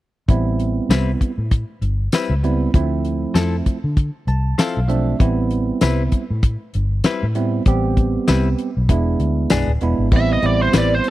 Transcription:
0.28 A1 G3 B3 C4 E4, kick, closed hi-hat
0.59 closed hi-hat
0.89 C2 G3 C4 E4 B4, snare, closed hi-hat, tambourine
1.21 kick, closed hi-hat
1.38 A2
1.51 kick, closed hi-hat
1.81 G1, closed hi-hat
2.12 G3 C4 E4 B4, snare, closed hi-hat, tambourine
2.30 C#2
2.43 G3 B3 C4 E4, closed hi-hat
2.74 D2 F3 A3 C4 E4, kick, closed hi-hat
3.05 closed hi-hat
3.34 F2 F3 C4 E4 A4, snare, closed hi-hat, tambourine
3.66 kick, closed hi-hat
3.84 D3
3.97 kick, closed hi-hat
4.27 C2 A5, closed hi-hat
4.58 F3 C4 E4 A4 F5, snare, closed hi-hat, tambourine
4.77 B1
4.88 F3 A3 C4 D4 E5, closed hi-hat
5.19 A1 G3 B3 C4 E4, kick, closed hi-hat
5.50 closed hi-hat
5.81 C2 G3 C4 E4 B4, snare, closed hi-hat, tambourine
6.12 kick, closed hi-hat
6.30 A2
6.43 kick, closed hi-hat
6.74 G1, closed hi-hat
7.04 G3 C4 E4 B4, snare, closed hi-hat, tambourine
7.23 A2
7.35 G3 B3 C4 E4, closed hi-hat
7.66 A1 G3 B3 C4 G4, kick, closed hi-hat
7.97 kick, closed hi-hat
8.28 C2 G3 C4 E4 B4, snare, closed hi-hat, tambourine
8.58 closed hi-hat
8.77 B1
8.89 E1 G#3 B3 D4 E4, kick, closed hi-hat
9.20 D2, closed hi-hat
9.50 B0 B3 D4 G#4, snare, closed hi-hat, tambourine
9.67 D1
9.81 E1 G#3 B3 D4 E4, closed hi-hat
9.98 G#1
10.11 A1 G3 B3 C4 E4, kick, crash
10.16 E5
10.33 D#5
10.42 A1 G3 B3 C4 E4 D5, closed hi-hat
10.62 C5
10.73 A1 G3 C4 E4 B4, snare, closed hi-hat, tambourine
10.78 D5
10.95 C5
11.04 closed hi-hat

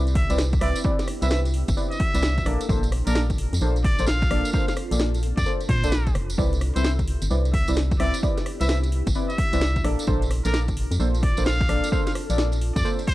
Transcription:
Already playing: C2 B3 D4 E4 G4
0.07 closed hi-hat, tambourine
0.15 E5, kick, open hi-hat
0.30 C2 C4 E4 B4 D5, closed hi-hat, tambourine
0.38 snare, tambourine
0.53 kick, closed hi-hat, tambourine
0.61 C2 C4 E4 B4 D5 E5, cross-stick, open hi-hat
0.76 closed hi-hat, tambourine
0.84 C4 E4 B4 D5, kick, tambourine
0.99 snare, closed hi-hat, tambourine
1.08 cross-stick, open hi-hat
1.22 C2 C4 E4 B4 E5, closed hi-hat, tambourine
1.30 E5, snare, tambourine
1.45 closed hi-hat, tambourine
1.54 open hi-hat
1.68 G1, kick, closed hi-hat, tambourine
1.77 C4 E4 B4 D5, tambourine
1.91 E5, closed hi-hat, tambourine
2.00 kick, open hi-hat
2.14 C2 C4 E4 B4 D5, closed hi-hat, tambourine
2.22 snare, tambourine
2.38 kick, closed hi-hat, tambourine
2.46 A#1 A#3 C4 D4 F4 A4 D5, cross-stick, open hi-hat
2.61 closed hi-hat, tambourine
2.69 A#1 A#3 D4 A4 C5, kick, tambourine
2.83 closed hi-hat, tambourine
2.92 cross-stick, open hi-hat
3.07 A#1 A#3 D4 A4 A#4 D5, closed hi-hat, tambourine
3.15 snare, tambourine
3.30 kick, closed hi-hat, tambourine
3.38 open hi-hat
3.53 F2, closed hi-hat, tambourine
3.61 A#1 A#3 D4 A4 C5, tambourine
3.76 closed hi-hat, tambourine
3.84 D5, kick, open hi-hat
3.99 A#1 A#3 D4 A4 C5, closed hi-hat, tambourine
4.07 F5, snare, tambourine
4.22 kick, closed hi-hat, tambourine
4.31 A#1 A#3 D4 A4 D5, cross-stick, open hi-hat
4.45 closed hi-hat, tambourine
4.53 A#3 D4 A4 C5 F5, kick, tambourine
4.68 F5, snare, closed hi-hat, tambourine
4.77 cross-stick, open hi-hat
4.91 A#1 A#3 D4 A4 D5, closed hi-hat, tambourine
4.99 snare, tambourine
5.14 closed hi-hat, tambourine
5.23 open hi-hat
5.37 F2 D5, kick, closed hi-hat, tambourine
5.46 A#3 D4 A4 C5, tambourine
5.61 closed hi-hat, tambourine
5.69 A#2 C5, kick, open hi-hat
5.84 A#1 A#3 D4 A4 D5, closed hi-hat, tambourine
5.92 snare, tambourine
6.07 kick, closed hi-hat, tambourine
6.15 F1, cross-stick, open hi-hat
6.30 closed hi-hat, tambourine
6.38 C2 B3 C4 D4 E4 G4 B4 D5, kick, tambourine
6.53 closed hi-hat, tambourine
6.61 cross-stick, open hi-hat
6.76 C2 C4 E4 B4 C5 E5, closed hi-hat, tambourine
6.84 snare, tambourine
6.99 kick, closed hi-hat, tambourine
7.08 open hi-hat
7.22 G1, closed hi-hat, tambourine
7.30 C2 C4 E4 B4 D5, tambourine
7.45 closed hi-hat, tambourine
7.54 E5, kick, open hi-hat
7.68 C2 C4 E4 B4 D5, closed hi-hat, tambourine
7.77 snare, tambourine
7.91 kick, closed hi-hat, tambourine
8.00 C2 C4 E4 B4 D5 E5, cross-stick, open hi-hat
8.14 closed hi-hat, tambourine
8.23 C4 E4 B4 D5, kick, tambourine
8.37 snare, closed hi-hat, tambourine
8.46 cross-stick, open hi-hat
8.61 C2 C4 E4 B4 E5, closed hi-hat, tambourine
8.69 E5, snare, tambourine
8.83 closed hi-hat, tambourine
8.92 open hi-hat
9.07 G1, kick, closed hi-hat, tambourine
9.15 C4 E4 B4 D5, tambourine
9.30 E5, closed hi-hat, tambourine
9.38 kick, open hi-hat
9.53 C2 C4 E4 B4 D5, closed hi-hat, tambourine
9.61 snare, tambourine
9.76 kick, closed hi-hat, tambourine
9.84 A#1 A#3 C4 D4 F4 A4 D5, cross-stick, open hi-hat
9.99 closed hi-hat, tambourine
10.07 A#1 A#3 D4 A4 C5, kick, tambourine
10.22 closed hi-hat, tambourine
10.31 cross-stick, open hi-hat
10.45 A#1 A#3 D4 A4 A#4 D5, closed hi-hat, tambourine
10.54 snare, tambourine
10.68 kick, closed hi-hat, tambourine
10.77 open hi-hat
10.91 F2, closed hi-hat, tambourine
11.00 A#1 A#3 D4 A4 C5, tambourine
11.15 closed hi-hat, tambourine
11.23 D5, kick, open hi-hat
11.37 A#1 A#3 D4 A4 C5, closed hi-hat, tambourine
11.46 F5, snare, tambourine
11.60 kick, closed hi-hat, tambourine
11.69 A#1 A#3 D4 A4 D5, cross-stick, open hi-hat
11.84 closed hi-hat, tambourine
11.92 A#3 D4 A4 C5 F5, kick, tambourine
12.07 F5, snare, closed hi-hat, tambourine
12.15 cross-stick, open hi-hat
12.30 A#1 A#3 D4 A4 D5, closed hi-hat, tambourine
12.38 snare, tambourine
12.52 closed hi-hat, tambourine
12.61 open hi-hat
12.76 F2 D5, kick, closed hi-hat, tambourine
12.84 A#3 D4 A4 C5, tambourine
12.99 closed hi-hat, tambourine
13.07 C5, kick, open hi-hat

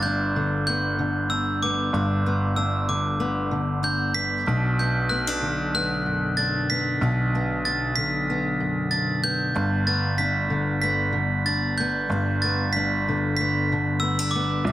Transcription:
Already playing: G1 G2 B3
0.03 D4 G6
0.36 D3
0.67 B3 G6
0.99 D3
1.30 D4 E6
1.62 B3 D6
1.93 G1 G2 D4
2.26 B3
2.56 D4 E6
2.89 D3 D6
3.20 B3
3.51 D3
3.83 D4 G6
4.14 B3 B6
4.47 B1 B2 D4
4.79 B3 G6
5.09 B3 F#6
5.27 D4
5.42 D3
5.75 B3 F#6
6.06 F#2
6.37 D4 A6
6.70 B3 B6
7.01 B1 B2 D4
7.35 B3
7.65 D4 A6
7.96 D3 B6
8.30 B3
8.60 F#2
8.91 D4 A6
9.23 B3 G6
9.54 G1 G2 D4
9.87 B3 A6
10.18 D4 B6
10.50 D3
10.82 B3 B6
11.12 D3
11.46 D4 A6
11.78 B3 G6
12.10 G1 G2 D4
12.42 B3 A6
12.73 D4 B6
13.08 D3
13.37 B3 B6
13.72 D3
14.00 B3 E6
14.19 D4
14.31 D6
14.35 B3
14.64 C2 C3 D4

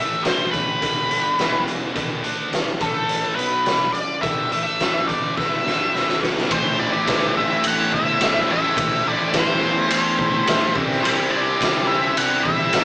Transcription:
Already playing: A1 A2 E3 E5
0.00 A3
0.24 C5, snare, closed hi-hat
0.51 B4, kick, closed hi-hat
0.81 E1 E2 B2 E3, kick, closed hi-hat
1.10 G1 G2 D3 G3, closed hi-hat
1.38 E1 E2 B2 E3, snare, closed hi-hat
1.68 closed hi-hat
1.96 E1 E2 B2 E3, kick, closed hi-hat
2.24 D2 D3 A3 D4, closed hi-hat
2.51 E1 E2 B2, snare, closed hi-hat
2.80 A1 A2 E3 A3 A4, kick, closed hi-hat
3.09 closed hi-hat
3.35 B1 B2 F#3 B3 B4, closed hi-hat
3.65 E1 E2 B2, snare, closed hi-hat
3.92 D5, closed hi-hat
4.22 G1 G2 D3 G3 E5, kick, closed hi-hat
4.50 A1 A2 E3 A3 E5, closed hi-hat
4.80 snare, closed hi-hat
5.08 D5, kick, closed hi-hat
5.36 E1 E2 B2 E3 E5, kick, snare
5.64 G1 G2 D3 G3, snare
5.91 E1 E2 B2 E3, snare
6.09 snare
6.20 A3 B3, snare
6.25 C4 D4
6.30 E4 F4
6.37 G4 A4, snare
6.42 B4 C5
6.47 A1 A2 E3 A3 C4 E4 A4 D5 E5, kick, ride bell
6.52 C4 E4 C5
6.78 A1 E3 A3 C4 E4 D5
6.92 A3 C4 E4
7.05 A1 A2 E3 A3 C4 E4, kick, snare, ride bell
7.34 E3 A3 C4 E4 E5
7.47 A3 C4 E4
7.64 A1 F#5, ride bell
7.76 A3 C4 E4
7.92 G1 E5, kick
8.05 A3 C4 E4
8.18 G1 A2 E3 A3 C4 E4, snare, ride bell
8.47 A1 A2 E3 A3 C4 E4
8.52 E5
8.62 A3 C4 E4
8.74 A1 A2 E3 A3 C4 E4 A4 C5 E5, kick, ride bell
8.78 E3 A3
9.03 A1 E3 A3 C4 E4
9.08 D5
9.18 A3 C4 E4
9.31 A1 A2 E3 A3 C4 E4, kick, snare, ride bell
9.38 C5
9.60 E2 E3 A3 C4 E4
9.74 A3 C4 E4
9.90 E2, ride bell
10.04 A3 C4 E4
10.19 kick
10.33 A3 C4 E4
10.47 A1 A2 E3 A3 C4 E4, snare, ride bell
10.75 C2 C3 E3 G3 C4 E4 G4 E5, kick
10.89 G3 C4 E4, snare
11.03 C2 C3 E3 G3 C4 E4 C5, ride bell
11.31 C2 E3 G3 C4 E4 D5
11.46 G3 C4 E4
11.60 C2 C3 E3 G3 C4 E4, kick, snare, ride bell
11.87 E3 G3 C4 E4 E5
12.03 G3 C4 E4
12.17 C2 F#5, ride bell
12.32 G3 C4 E4
12.43 A1 E5, kick
12.60 G3 C4 E4
12.73 A1 C3 E3 G3 C4, snare, ride bell
12.77 E4

